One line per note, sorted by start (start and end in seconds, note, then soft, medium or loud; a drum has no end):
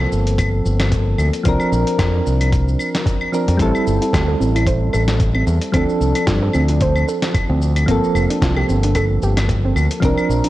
0.00 1.15 F3 medium
0.00 1.16 A#3 medium
0.00 1.17 C4 medium
0.00 1.17 A4 loud
0.12 0.60 G1 medium
0.12 shaker medium
0.27 closed hi-hat medium
0.27 shaker soft
0.38 kick loud
0.38 closed hi-hat soft
0.38 claves medium
0.38 shaker soft
0.65 1.14 G1 medium
0.65 shaker medium
0.80 snare medium
0.80 closed hi-hat soft
0.80 claves medium
0.80 shaker soft
0.92 kick loud
0.92 closed hi-hat soft
0.92 shaker soft
1.18 1.29 D2 medium
1.18 claves medium
1.18 shaker medium
1.33 closed hi-hat medium
1.33 shaker soft
1.44 1.56 C2 medium
1.44 3.29 F3 medium
1.44 3.30 C4 medium
1.44 3.31 D4 medium
1.44 kick loud
1.44 closed hi-hat soft
1.44 shaker soft
1.49 3.32 A#4 loud
1.60 claves medium
1.60 shaker soft
1.72 1.83 A#1 medium
1.72 shaker medium
1.87 closed hi-hat medium
1.87 shaker soft
1.99 2.20 F2 loud
1.99 kick loud
1.99 snare medium
1.99 closed hi-hat soft
1.99 claves medium
1.99 shaker soft
2.27 2.75 C2 medium
2.27 shaker medium
2.41 closed hi-hat medium
2.41 claves medium
2.41 shaker soft
2.52 kick loud
2.52 closed hi-hat soft
2.52 shaker soft
2.68 shaker soft
2.79 claves medium
2.79 shaker medium
2.95 snare medium
2.95 closed hi-hat soft
2.95 shaker soft
3.06 kick loud
3.06 closed hi-hat soft
3.06 shaker soft
3.21 claves medium
3.32 3.57 F3 medium
3.32 3.57 C4 medium
3.32 3.57 D4 medium
3.32 3.58 A#4 medium
3.32 shaker medium
3.48 3.57 F2 medium
3.48 closed hi-hat soft
3.48 shaker soft
3.57 3.71 A1 loud
3.57 5.43 G3 medium
3.57 5.44 C4 medium
3.57 3.74 C4 medium
3.57 5.45 E4 medium
3.57 kick loud
3.57 closed hi-hat soft
3.57 shaker soft
3.62 5.46 A4 loud
3.75 claves medium
3.75 shaker soft
3.87 3.98 G1 medium
3.87 shaker medium
4.01 4.13 E4 medium
4.01 closed hi-hat medium
4.01 shaker soft
4.13 4.34 D2 loud
4.13 4.27 G4 medium
4.13 kick loud
4.13 snare medium
4.13 closed hi-hat soft
4.13 claves medium
4.13 shaker soft
4.28 4.39 A4 medium
4.40 4.89 A1 medium
4.40 4.54 C4 medium
4.40 shaker medium
4.55 4.66 E4 medium
4.55 closed hi-hat medium
4.55 claves medium
4.55 shaker soft
4.67 4.80 C5 medium
4.67 kick loud
4.67 closed hi-hat soft
4.67 shaker soft
4.93 5.43 A1 medium
4.93 5.02 A4 medium
4.93 claves medium
4.93 shaker medium
5.08 snare medium
5.08 closed hi-hat soft
5.08 shaker soft
5.20 kick loud
5.20 closed hi-hat soft
5.20 shaker soft
5.35 5.46 C4 medium
5.35 claves medium
5.47 5.58 E2 loud
5.47 shaker medium
5.62 closed hi-hat medium
5.62 shaker soft
5.72 5.85 D2 medium
5.72 7.58 F3 medium
5.72 5.88 C4 medium
5.72 7.59 C4 medium
5.72 7.59 D4 medium
5.72 kick medium
5.72 closed hi-hat soft
5.72 claves medium
5.72 shaker soft
5.77 7.60 A4 loud
5.89 shaker soft
6.01 6.12 C2 medium
6.01 shaker medium
6.15 6.27 D4 medium
6.15 closed hi-hat medium
6.15 claves medium
6.15 shaker soft
6.27 6.48 G2 loud
6.27 6.41 F4 medium
6.27 kick loud
6.27 snare medium
6.27 closed hi-hat soft
6.27 shaker soft
6.43 6.53 A4 medium
6.54 7.03 D2 medium
6.54 6.68 C4 medium
6.54 claves medium
6.54 shaker medium
6.69 6.80 D4 medium
6.69 closed hi-hat medium
6.69 shaker soft
6.81 6.95 C5 medium
6.81 kick loud
6.81 closed hi-hat soft
6.81 shaker soft
6.96 claves medium
6.96 shaker soft
7.08 7.16 A4 medium
7.08 shaker medium
7.22 snare medium
7.22 closed hi-hat medium
7.22 shaker soft
7.35 kick loud
7.35 closed hi-hat soft
7.35 claves medium
7.35 shaker soft
7.50 7.83 D2 medium
7.50 7.60 C4 medium
7.62 shaker medium
7.76 closed hi-hat medium
7.76 claves medium
7.76 shaker soft
7.86 7.99 G1 medium
7.86 9.72 F3 medium
7.86 9.73 A#3 medium
7.86 8.02 C4 medium
7.86 9.73 C4 medium
7.86 kick loud
7.86 closed hi-hat soft
7.86 shaker soft
7.91 9.74 A4 loud
8.04 shaker soft
8.15 8.26 F1 medium
8.15 claves medium
8.15 shaker medium
8.30 8.41 D4 medium
8.30 closed hi-hat medium
8.30 shaker soft
8.42 8.63 C2 loud
8.42 8.56 F4 medium
8.42 kick loud
8.42 snare medium
8.42 closed hi-hat soft
8.42 shaker soft
8.56 8.68 G4 medium
8.56 claves medium
8.69 9.17 G1 medium
8.69 8.82 C4 medium
8.69 shaker medium
8.83 8.95 D4 medium
8.83 closed hi-hat medium
8.83 shaker soft
8.95 9.09 A4 medium
8.95 kick medium
8.95 closed hi-hat soft
8.95 claves medium
8.95 shaker soft
9.22 9.71 G1 medium
9.22 9.31 G4 medium
9.22 shaker medium
9.37 snare medium
9.37 closed hi-hat medium
9.37 claves medium
9.37 shaker soft
9.49 kick loud
9.49 closed hi-hat soft
9.49 shaker soft
9.65 9.75 C4 medium
9.76 9.87 D2 loud
9.76 claves medium
9.76 shaker medium
9.91 closed hi-hat medium
9.91 shaker soft
10.00 10.13 C2 loud
10.00 10.49 F3 medium
10.00 10.49 C4 medium
10.00 10.17 C4 medium
10.00 10.49 D4 medium
10.00 kick loud
10.00 closed hi-hat soft
10.00 shaker soft
10.05 10.49 A#4 loud
10.17 claves medium
10.17 shaker soft
10.29 10.40 A#1 medium
10.29 shaker medium
10.44 10.49 D4 medium
10.44 closed hi-hat medium
10.44 shaker soft